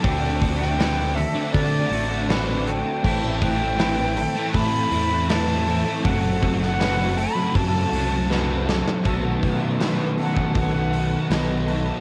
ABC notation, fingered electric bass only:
X:1
M:4/4
L:1/8
Q:1/4=80
K:Bphr
V:1 name="Fingered electric bass" clef=bass
D,,4 D, A,,,3 | A,,,4 A,, E,,3 | F,,,4 F,, C,,3 | B,,, z3 B,,,2 B,,,2 |]